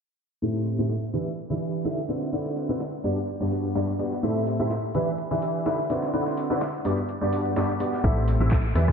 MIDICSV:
0, 0, Header, 1, 4, 480
1, 0, Start_track
1, 0, Tempo, 476190
1, 424, Time_signature, 4, 2, 24, 8
1, 8993, End_track
2, 0, Start_track
2, 0, Title_t, "Grand piano"
2, 0, Program_c, 0, 0
2, 424, Note_on_c, 0, 64, 69
2, 424, Note_on_c, 0, 69, 70
2, 425, Note_on_c, 0, 45, 76
2, 425, Note_on_c, 0, 60, 68
2, 425, Note_on_c, 0, 67, 72
2, 425, Note_on_c, 0, 76, 84
2, 761, Note_off_c, 0, 64, 0
2, 762, Note_off_c, 0, 45, 0
2, 762, Note_off_c, 0, 60, 0
2, 762, Note_off_c, 0, 67, 0
2, 762, Note_off_c, 0, 69, 0
2, 762, Note_off_c, 0, 76, 0
2, 792, Note_on_c, 0, 45, 87
2, 792, Note_on_c, 0, 60, 79
2, 793, Note_on_c, 0, 64, 78
2, 793, Note_on_c, 0, 67, 78
2, 793, Note_on_c, 0, 69, 78
2, 793, Note_on_c, 0, 76, 95
2, 910, Note_off_c, 0, 45, 0
2, 910, Note_off_c, 0, 60, 0
2, 910, Note_off_c, 0, 64, 0
2, 910, Note_off_c, 0, 67, 0
2, 910, Note_off_c, 0, 69, 0
2, 910, Note_off_c, 0, 76, 0
2, 1144, Note_on_c, 0, 52, 77
2, 1144, Note_on_c, 0, 62, 71
2, 1144, Note_on_c, 0, 64, 74
2, 1144, Note_on_c, 0, 67, 74
2, 1144, Note_on_c, 0, 71, 74
2, 1144, Note_on_c, 0, 76, 86
2, 1277, Note_off_c, 0, 52, 0
2, 1277, Note_off_c, 0, 62, 0
2, 1277, Note_off_c, 0, 64, 0
2, 1277, Note_off_c, 0, 67, 0
2, 1277, Note_off_c, 0, 71, 0
2, 1277, Note_off_c, 0, 76, 0
2, 1511, Note_on_c, 0, 52, 74
2, 1511, Note_on_c, 0, 62, 71
2, 1511, Note_on_c, 0, 64, 69
2, 1511, Note_on_c, 0, 67, 69
2, 1511, Note_on_c, 0, 76, 84
2, 1512, Note_on_c, 0, 71, 66
2, 1837, Note_off_c, 0, 52, 0
2, 1837, Note_off_c, 0, 62, 0
2, 1837, Note_off_c, 0, 64, 0
2, 1837, Note_off_c, 0, 67, 0
2, 1837, Note_off_c, 0, 71, 0
2, 1837, Note_off_c, 0, 76, 0
2, 1863, Note_on_c, 0, 50, 87
2, 1863, Note_on_c, 0, 76, 97
2, 1864, Note_on_c, 0, 62, 78
2, 1864, Note_on_c, 0, 64, 77
2, 1864, Note_on_c, 0, 67, 80
2, 1864, Note_on_c, 0, 71, 78
2, 1996, Note_off_c, 0, 50, 0
2, 1997, Note_off_c, 0, 62, 0
2, 1997, Note_off_c, 0, 64, 0
2, 1997, Note_off_c, 0, 67, 0
2, 1997, Note_off_c, 0, 71, 0
2, 1997, Note_off_c, 0, 76, 0
2, 2104, Note_on_c, 0, 50, 69
2, 2104, Note_on_c, 0, 60, 64
2, 2104, Note_on_c, 0, 64, 65
2, 2104, Note_on_c, 0, 66, 63
2, 2104, Note_on_c, 0, 71, 60
2, 2104, Note_on_c, 0, 74, 75
2, 2317, Note_off_c, 0, 50, 0
2, 2317, Note_off_c, 0, 60, 0
2, 2317, Note_off_c, 0, 64, 0
2, 2317, Note_off_c, 0, 66, 0
2, 2317, Note_off_c, 0, 71, 0
2, 2317, Note_off_c, 0, 74, 0
2, 2344, Note_on_c, 0, 50, 79
2, 2344, Note_on_c, 0, 60, 69
2, 2344, Note_on_c, 0, 64, 68
2, 2344, Note_on_c, 0, 66, 70
2, 2344, Note_on_c, 0, 71, 70
2, 2344, Note_on_c, 0, 74, 85
2, 2681, Note_off_c, 0, 60, 0
2, 2681, Note_off_c, 0, 64, 0
2, 2681, Note_off_c, 0, 66, 0
2, 2681, Note_off_c, 0, 71, 0
2, 2681, Note_off_c, 0, 74, 0
2, 2682, Note_off_c, 0, 50, 0
2, 2711, Note_on_c, 0, 50, 88
2, 2711, Note_on_c, 0, 60, 83
2, 2711, Note_on_c, 0, 66, 80
2, 2712, Note_on_c, 0, 64, 81
2, 2712, Note_on_c, 0, 71, 80
2, 2712, Note_on_c, 0, 74, 94
2, 2829, Note_off_c, 0, 50, 0
2, 2829, Note_off_c, 0, 60, 0
2, 2829, Note_off_c, 0, 64, 0
2, 2829, Note_off_c, 0, 66, 0
2, 2829, Note_off_c, 0, 71, 0
2, 2829, Note_off_c, 0, 74, 0
2, 3064, Note_on_c, 0, 43, 80
2, 3064, Note_on_c, 0, 59, 74
2, 3064, Note_on_c, 0, 62, 77
2, 3064, Note_on_c, 0, 66, 76
2, 3064, Note_on_c, 0, 67, 76
2, 3064, Note_on_c, 0, 74, 89
2, 3197, Note_off_c, 0, 43, 0
2, 3197, Note_off_c, 0, 59, 0
2, 3197, Note_off_c, 0, 62, 0
2, 3197, Note_off_c, 0, 66, 0
2, 3197, Note_off_c, 0, 67, 0
2, 3197, Note_off_c, 0, 74, 0
2, 3432, Note_on_c, 0, 43, 75
2, 3432, Note_on_c, 0, 59, 69
2, 3432, Note_on_c, 0, 62, 71
2, 3432, Note_on_c, 0, 66, 72
2, 3432, Note_on_c, 0, 67, 68
2, 3432, Note_on_c, 0, 74, 83
2, 3757, Note_off_c, 0, 43, 0
2, 3757, Note_off_c, 0, 59, 0
2, 3757, Note_off_c, 0, 62, 0
2, 3757, Note_off_c, 0, 66, 0
2, 3757, Note_off_c, 0, 67, 0
2, 3757, Note_off_c, 0, 74, 0
2, 3783, Note_on_c, 0, 43, 88
2, 3783, Note_on_c, 0, 59, 79
2, 3783, Note_on_c, 0, 62, 81
2, 3783, Note_on_c, 0, 66, 79
2, 3783, Note_on_c, 0, 67, 79
2, 3783, Note_on_c, 0, 74, 95
2, 3916, Note_off_c, 0, 43, 0
2, 3916, Note_off_c, 0, 59, 0
2, 3916, Note_off_c, 0, 62, 0
2, 3916, Note_off_c, 0, 66, 0
2, 3916, Note_off_c, 0, 67, 0
2, 3916, Note_off_c, 0, 74, 0
2, 4024, Note_on_c, 0, 59, 70
2, 4024, Note_on_c, 0, 62, 64
2, 4024, Note_on_c, 0, 66, 66
2, 4024, Note_on_c, 0, 67, 65
2, 4024, Note_on_c, 0, 74, 74
2, 4237, Note_off_c, 0, 59, 0
2, 4237, Note_off_c, 0, 62, 0
2, 4237, Note_off_c, 0, 66, 0
2, 4237, Note_off_c, 0, 67, 0
2, 4237, Note_off_c, 0, 74, 0
2, 4263, Note_on_c, 0, 60, 72
2, 4264, Note_on_c, 0, 45, 75
2, 4264, Note_on_c, 0, 64, 69
2, 4264, Note_on_c, 0, 67, 72
2, 4264, Note_on_c, 0, 69, 72
2, 4264, Note_on_c, 0, 76, 88
2, 4601, Note_off_c, 0, 45, 0
2, 4601, Note_off_c, 0, 60, 0
2, 4601, Note_off_c, 0, 64, 0
2, 4601, Note_off_c, 0, 67, 0
2, 4601, Note_off_c, 0, 69, 0
2, 4601, Note_off_c, 0, 76, 0
2, 4631, Note_on_c, 0, 60, 81
2, 4631, Note_on_c, 0, 67, 83
2, 4631, Note_on_c, 0, 69, 80
2, 4631, Note_on_c, 0, 76, 95
2, 4632, Note_on_c, 0, 45, 86
2, 4632, Note_on_c, 0, 64, 79
2, 4749, Note_off_c, 0, 45, 0
2, 4749, Note_off_c, 0, 60, 0
2, 4749, Note_off_c, 0, 64, 0
2, 4749, Note_off_c, 0, 67, 0
2, 4749, Note_off_c, 0, 69, 0
2, 4749, Note_off_c, 0, 76, 0
2, 4983, Note_on_c, 0, 62, 75
2, 4984, Note_on_c, 0, 52, 85
2, 4984, Note_on_c, 0, 64, 73
2, 4984, Note_on_c, 0, 67, 75
2, 4984, Note_on_c, 0, 71, 75
2, 4984, Note_on_c, 0, 76, 92
2, 5117, Note_off_c, 0, 52, 0
2, 5117, Note_off_c, 0, 62, 0
2, 5117, Note_off_c, 0, 64, 0
2, 5117, Note_off_c, 0, 67, 0
2, 5117, Note_off_c, 0, 71, 0
2, 5117, Note_off_c, 0, 76, 0
2, 5352, Note_on_c, 0, 52, 78
2, 5352, Note_on_c, 0, 62, 70
2, 5352, Note_on_c, 0, 64, 72
2, 5352, Note_on_c, 0, 67, 71
2, 5352, Note_on_c, 0, 71, 70
2, 5352, Note_on_c, 0, 76, 84
2, 5677, Note_off_c, 0, 52, 0
2, 5677, Note_off_c, 0, 62, 0
2, 5677, Note_off_c, 0, 64, 0
2, 5677, Note_off_c, 0, 67, 0
2, 5677, Note_off_c, 0, 71, 0
2, 5677, Note_off_c, 0, 76, 0
2, 5705, Note_on_c, 0, 50, 85
2, 5705, Note_on_c, 0, 62, 80
2, 5705, Note_on_c, 0, 64, 81
2, 5705, Note_on_c, 0, 67, 82
2, 5705, Note_on_c, 0, 71, 83
2, 5705, Note_on_c, 0, 76, 97
2, 5837, Note_off_c, 0, 50, 0
2, 5837, Note_off_c, 0, 62, 0
2, 5837, Note_off_c, 0, 64, 0
2, 5837, Note_off_c, 0, 67, 0
2, 5837, Note_off_c, 0, 71, 0
2, 5837, Note_off_c, 0, 76, 0
2, 5945, Note_on_c, 0, 50, 70
2, 5945, Note_on_c, 0, 60, 63
2, 5945, Note_on_c, 0, 64, 66
2, 5945, Note_on_c, 0, 66, 65
2, 5945, Note_on_c, 0, 71, 64
2, 5945, Note_on_c, 0, 74, 76
2, 6158, Note_off_c, 0, 50, 0
2, 6158, Note_off_c, 0, 60, 0
2, 6158, Note_off_c, 0, 64, 0
2, 6158, Note_off_c, 0, 66, 0
2, 6158, Note_off_c, 0, 71, 0
2, 6158, Note_off_c, 0, 74, 0
2, 6185, Note_on_c, 0, 50, 79
2, 6185, Note_on_c, 0, 60, 70
2, 6185, Note_on_c, 0, 64, 73
2, 6185, Note_on_c, 0, 66, 71
2, 6185, Note_on_c, 0, 71, 73
2, 6185, Note_on_c, 0, 74, 85
2, 6522, Note_off_c, 0, 50, 0
2, 6522, Note_off_c, 0, 60, 0
2, 6522, Note_off_c, 0, 64, 0
2, 6522, Note_off_c, 0, 66, 0
2, 6522, Note_off_c, 0, 71, 0
2, 6522, Note_off_c, 0, 74, 0
2, 6552, Note_on_c, 0, 50, 90
2, 6552, Note_on_c, 0, 74, 96
2, 6553, Note_on_c, 0, 60, 80
2, 6553, Note_on_c, 0, 64, 83
2, 6553, Note_on_c, 0, 66, 78
2, 6553, Note_on_c, 0, 71, 80
2, 6670, Note_off_c, 0, 50, 0
2, 6670, Note_off_c, 0, 60, 0
2, 6670, Note_off_c, 0, 64, 0
2, 6670, Note_off_c, 0, 66, 0
2, 6670, Note_off_c, 0, 71, 0
2, 6670, Note_off_c, 0, 74, 0
2, 6904, Note_on_c, 0, 43, 79
2, 6904, Note_on_c, 0, 59, 74
2, 6904, Note_on_c, 0, 62, 76
2, 6904, Note_on_c, 0, 66, 72
2, 6904, Note_on_c, 0, 67, 76
2, 6904, Note_on_c, 0, 74, 88
2, 7037, Note_off_c, 0, 43, 0
2, 7037, Note_off_c, 0, 59, 0
2, 7037, Note_off_c, 0, 62, 0
2, 7037, Note_off_c, 0, 66, 0
2, 7037, Note_off_c, 0, 67, 0
2, 7037, Note_off_c, 0, 74, 0
2, 7272, Note_on_c, 0, 43, 76
2, 7272, Note_on_c, 0, 59, 71
2, 7272, Note_on_c, 0, 62, 69
2, 7272, Note_on_c, 0, 66, 71
2, 7272, Note_on_c, 0, 67, 71
2, 7272, Note_on_c, 0, 74, 85
2, 7597, Note_off_c, 0, 43, 0
2, 7597, Note_off_c, 0, 59, 0
2, 7597, Note_off_c, 0, 62, 0
2, 7597, Note_off_c, 0, 66, 0
2, 7597, Note_off_c, 0, 67, 0
2, 7597, Note_off_c, 0, 74, 0
2, 7624, Note_on_c, 0, 43, 87
2, 7624, Note_on_c, 0, 59, 78
2, 7624, Note_on_c, 0, 62, 83
2, 7624, Note_on_c, 0, 66, 79
2, 7624, Note_on_c, 0, 67, 82
2, 7624, Note_on_c, 0, 74, 96
2, 7757, Note_off_c, 0, 43, 0
2, 7757, Note_off_c, 0, 59, 0
2, 7757, Note_off_c, 0, 62, 0
2, 7757, Note_off_c, 0, 66, 0
2, 7757, Note_off_c, 0, 67, 0
2, 7757, Note_off_c, 0, 74, 0
2, 7864, Note_on_c, 0, 59, 70
2, 7864, Note_on_c, 0, 62, 63
2, 7864, Note_on_c, 0, 66, 63
2, 7864, Note_on_c, 0, 67, 63
2, 7864, Note_on_c, 0, 74, 76
2, 8077, Note_off_c, 0, 59, 0
2, 8077, Note_off_c, 0, 62, 0
2, 8077, Note_off_c, 0, 66, 0
2, 8077, Note_off_c, 0, 67, 0
2, 8077, Note_off_c, 0, 74, 0
2, 8103, Note_on_c, 0, 76, 85
2, 8104, Note_on_c, 0, 45, 75
2, 8104, Note_on_c, 0, 60, 70
2, 8104, Note_on_c, 0, 64, 69
2, 8104, Note_on_c, 0, 67, 70
2, 8104, Note_on_c, 0, 69, 72
2, 8441, Note_off_c, 0, 45, 0
2, 8441, Note_off_c, 0, 60, 0
2, 8441, Note_off_c, 0, 64, 0
2, 8441, Note_off_c, 0, 67, 0
2, 8441, Note_off_c, 0, 69, 0
2, 8441, Note_off_c, 0, 76, 0
2, 8471, Note_on_c, 0, 67, 85
2, 8472, Note_on_c, 0, 45, 92
2, 8472, Note_on_c, 0, 60, 85
2, 8472, Note_on_c, 0, 64, 79
2, 8472, Note_on_c, 0, 69, 81
2, 8472, Note_on_c, 0, 76, 100
2, 8589, Note_off_c, 0, 45, 0
2, 8589, Note_off_c, 0, 60, 0
2, 8589, Note_off_c, 0, 64, 0
2, 8589, Note_off_c, 0, 67, 0
2, 8589, Note_off_c, 0, 69, 0
2, 8589, Note_off_c, 0, 76, 0
2, 8824, Note_on_c, 0, 52, 80
2, 8824, Note_on_c, 0, 62, 78
2, 8824, Note_on_c, 0, 64, 72
2, 8824, Note_on_c, 0, 67, 73
2, 8824, Note_on_c, 0, 71, 76
2, 8824, Note_on_c, 0, 76, 90
2, 8957, Note_off_c, 0, 52, 0
2, 8957, Note_off_c, 0, 62, 0
2, 8957, Note_off_c, 0, 64, 0
2, 8957, Note_off_c, 0, 67, 0
2, 8957, Note_off_c, 0, 71, 0
2, 8957, Note_off_c, 0, 76, 0
2, 8993, End_track
3, 0, Start_track
3, 0, Title_t, "FM bass"
3, 0, Program_c, 1, 39
3, 8105, Note_on_c, 1, 33, 95
3, 8447, Note_off_c, 1, 33, 0
3, 8472, Note_on_c, 1, 33, 90
3, 8802, Note_off_c, 1, 33, 0
3, 8824, Note_on_c, 1, 40, 94
3, 8993, Note_off_c, 1, 40, 0
3, 8993, End_track
4, 0, Start_track
4, 0, Title_t, "Drums"
4, 424, Note_on_c, 9, 42, 78
4, 525, Note_off_c, 9, 42, 0
4, 664, Note_on_c, 9, 38, 45
4, 664, Note_on_c, 9, 42, 59
4, 664, Note_on_c, 9, 46, 97
4, 765, Note_off_c, 9, 38, 0
4, 765, Note_off_c, 9, 42, 0
4, 765, Note_off_c, 9, 46, 0
4, 904, Note_on_c, 9, 38, 109
4, 904, Note_on_c, 9, 42, 79
4, 1005, Note_off_c, 9, 38, 0
4, 1005, Note_off_c, 9, 42, 0
4, 1143, Note_on_c, 9, 46, 96
4, 1144, Note_off_c, 9, 46, 0
4, 1144, Note_on_c, 9, 46, 74
4, 1245, Note_off_c, 9, 46, 0
4, 1384, Note_on_c, 9, 42, 79
4, 1484, Note_off_c, 9, 42, 0
4, 1512, Note_on_c, 9, 38, 44
4, 1613, Note_off_c, 9, 38, 0
4, 1624, Note_on_c, 9, 42, 62
4, 1624, Note_on_c, 9, 46, 98
4, 1724, Note_off_c, 9, 42, 0
4, 1724, Note_off_c, 9, 46, 0
4, 1863, Note_on_c, 9, 38, 106
4, 1863, Note_on_c, 9, 42, 79
4, 1964, Note_off_c, 9, 38, 0
4, 1964, Note_off_c, 9, 42, 0
4, 2103, Note_on_c, 9, 46, 96
4, 2104, Note_on_c, 9, 38, 44
4, 2104, Note_on_c, 9, 42, 63
4, 2204, Note_off_c, 9, 46, 0
4, 2205, Note_off_c, 9, 38, 0
4, 2205, Note_off_c, 9, 42, 0
4, 2232, Note_on_c, 9, 38, 40
4, 2333, Note_off_c, 9, 38, 0
4, 2344, Note_on_c, 9, 42, 76
4, 2445, Note_off_c, 9, 42, 0
4, 2472, Note_on_c, 9, 38, 45
4, 2573, Note_off_c, 9, 38, 0
4, 2583, Note_on_c, 9, 46, 99
4, 2584, Note_on_c, 9, 38, 38
4, 2584, Note_on_c, 9, 42, 62
4, 2684, Note_off_c, 9, 46, 0
4, 2685, Note_off_c, 9, 38, 0
4, 2685, Note_off_c, 9, 42, 0
4, 2824, Note_on_c, 9, 38, 107
4, 2824, Note_on_c, 9, 42, 82
4, 2925, Note_off_c, 9, 38, 0
4, 2925, Note_off_c, 9, 42, 0
4, 3064, Note_on_c, 9, 42, 61
4, 3064, Note_on_c, 9, 46, 98
4, 3164, Note_off_c, 9, 46, 0
4, 3165, Note_off_c, 9, 42, 0
4, 3192, Note_on_c, 9, 42, 41
4, 3293, Note_off_c, 9, 42, 0
4, 3304, Note_on_c, 9, 42, 80
4, 3405, Note_off_c, 9, 42, 0
4, 3544, Note_on_c, 9, 42, 61
4, 3544, Note_on_c, 9, 46, 101
4, 3645, Note_off_c, 9, 42, 0
4, 3645, Note_off_c, 9, 46, 0
4, 3672, Note_on_c, 9, 42, 41
4, 3773, Note_off_c, 9, 42, 0
4, 3784, Note_on_c, 9, 38, 106
4, 3784, Note_on_c, 9, 42, 84
4, 3885, Note_off_c, 9, 38, 0
4, 3885, Note_off_c, 9, 42, 0
4, 3913, Note_on_c, 9, 42, 40
4, 4013, Note_off_c, 9, 42, 0
4, 4024, Note_on_c, 9, 46, 101
4, 4025, Note_on_c, 9, 42, 62
4, 4125, Note_off_c, 9, 46, 0
4, 4126, Note_off_c, 9, 42, 0
4, 4152, Note_on_c, 9, 38, 35
4, 4253, Note_off_c, 9, 38, 0
4, 4264, Note_on_c, 9, 42, 77
4, 4365, Note_off_c, 9, 42, 0
4, 4504, Note_on_c, 9, 38, 44
4, 4504, Note_on_c, 9, 42, 61
4, 4504, Note_on_c, 9, 46, 101
4, 4605, Note_off_c, 9, 38, 0
4, 4605, Note_off_c, 9, 42, 0
4, 4605, Note_off_c, 9, 46, 0
4, 4744, Note_on_c, 9, 38, 105
4, 4744, Note_on_c, 9, 42, 84
4, 4845, Note_off_c, 9, 38, 0
4, 4845, Note_off_c, 9, 42, 0
4, 4984, Note_on_c, 9, 46, 77
4, 5085, Note_off_c, 9, 46, 0
4, 5224, Note_on_c, 9, 42, 82
4, 5325, Note_off_c, 9, 42, 0
4, 5352, Note_on_c, 9, 38, 45
4, 5453, Note_off_c, 9, 38, 0
4, 5464, Note_on_c, 9, 42, 64
4, 5464, Note_on_c, 9, 46, 105
4, 5565, Note_off_c, 9, 42, 0
4, 5565, Note_off_c, 9, 46, 0
4, 5705, Note_on_c, 9, 38, 112
4, 5705, Note_on_c, 9, 42, 86
4, 5805, Note_off_c, 9, 38, 0
4, 5805, Note_off_c, 9, 42, 0
4, 5944, Note_on_c, 9, 46, 101
4, 5945, Note_on_c, 9, 38, 44
4, 5945, Note_on_c, 9, 42, 64
4, 6045, Note_off_c, 9, 46, 0
4, 6046, Note_off_c, 9, 38, 0
4, 6046, Note_off_c, 9, 42, 0
4, 6073, Note_on_c, 9, 38, 41
4, 6174, Note_off_c, 9, 38, 0
4, 6185, Note_on_c, 9, 42, 77
4, 6286, Note_off_c, 9, 42, 0
4, 6313, Note_on_c, 9, 38, 46
4, 6414, Note_off_c, 9, 38, 0
4, 6424, Note_on_c, 9, 46, 97
4, 6425, Note_on_c, 9, 38, 41
4, 6425, Note_on_c, 9, 42, 62
4, 6525, Note_off_c, 9, 46, 0
4, 6526, Note_off_c, 9, 38, 0
4, 6526, Note_off_c, 9, 42, 0
4, 6665, Note_on_c, 9, 38, 112
4, 6665, Note_on_c, 9, 42, 81
4, 6766, Note_off_c, 9, 38, 0
4, 6766, Note_off_c, 9, 42, 0
4, 6904, Note_on_c, 9, 46, 105
4, 6905, Note_on_c, 9, 42, 64
4, 7005, Note_off_c, 9, 46, 0
4, 7006, Note_off_c, 9, 42, 0
4, 7033, Note_on_c, 9, 42, 40
4, 7134, Note_off_c, 9, 42, 0
4, 7145, Note_on_c, 9, 42, 81
4, 7246, Note_off_c, 9, 42, 0
4, 7385, Note_on_c, 9, 42, 62
4, 7385, Note_on_c, 9, 46, 102
4, 7485, Note_off_c, 9, 46, 0
4, 7486, Note_off_c, 9, 42, 0
4, 7513, Note_on_c, 9, 42, 42
4, 7614, Note_off_c, 9, 42, 0
4, 7625, Note_on_c, 9, 38, 107
4, 7625, Note_on_c, 9, 42, 84
4, 7725, Note_off_c, 9, 38, 0
4, 7725, Note_off_c, 9, 42, 0
4, 7753, Note_on_c, 9, 42, 41
4, 7854, Note_off_c, 9, 42, 0
4, 7864, Note_on_c, 9, 46, 101
4, 7865, Note_on_c, 9, 42, 63
4, 7965, Note_off_c, 9, 46, 0
4, 7966, Note_off_c, 9, 42, 0
4, 7993, Note_on_c, 9, 38, 38
4, 8094, Note_off_c, 9, 38, 0
4, 8105, Note_on_c, 9, 36, 107
4, 8105, Note_on_c, 9, 42, 81
4, 8109, Note_on_c, 9, 54, 49
4, 8205, Note_off_c, 9, 36, 0
4, 8206, Note_off_c, 9, 42, 0
4, 8210, Note_off_c, 9, 54, 0
4, 8230, Note_on_c, 9, 54, 24
4, 8331, Note_off_c, 9, 54, 0
4, 8344, Note_on_c, 9, 46, 98
4, 8345, Note_on_c, 9, 38, 47
4, 8345, Note_on_c, 9, 42, 61
4, 8346, Note_on_c, 9, 54, 96
4, 8445, Note_off_c, 9, 46, 0
4, 8446, Note_off_c, 9, 38, 0
4, 8446, Note_off_c, 9, 42, 0
4, 8446, Note_off_c, 9, 54, 0
4, 8468, Note_on_c, 9, 54, 33
4, 8569, Note_off_c, 9, 54, 0
4, 8577, Note_on_c, 9, 54, 43
4, 8580, Note_on_c, 9, 39, 104
4, 8584, Note_on_c, 9, 36, 112
4, 8584, Note_on_c, 9, 38, 109
4, 8584, Note_on_c, 9, 42, 83
4, 8678, Note_off_c, 9, 54, 0
4, 8681, Note_off_c, 9, 39, 0
4, 8685, Note_off_c, 9, 36, 0
4, 8685, Note_off_c, 9, 38, 0
4, 8685, Note_off_c, 9, 42, 0
4, 8712, Note_on_c, 9, 54, 24
4, 8813, Note_off_c, 9, 54, 0
4, 8825, Note_on_c, 9, 37, 81
4, 8825, Note_on_c, 9, 46, 73
4, 8825, Note_on_c, 9, 54, 88
4, 8925, Note_off_c, 9, 37, 0
4, 8925, Note_off_c, 9, 54, 0
4, 8926, Note_off_c, 9, 46, 0
4, 8949, Note_on_c, 9, 54, 39
4, 8952, Note_on_c, 9, 36, 55
4, 8953, Note_on_c, 9, 37, 79
4, 8993, Note_off_c, 9, 36, 0
4, 8993, Note_off_c, 9, 37, 0
4, 8993, Note_off_c, 9, 54, 0
4, 8993, End_track
0, 0, End_of_file